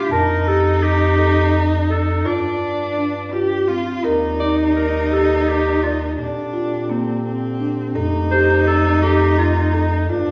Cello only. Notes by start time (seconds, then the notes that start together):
Already playing: F4
0.10 D#4
2.25 D4
3.32 G4
3.68 F4
4.04 D#4
6.18 D4
6.89 C4
7.25 C4
7.95 D#4
10.09 D4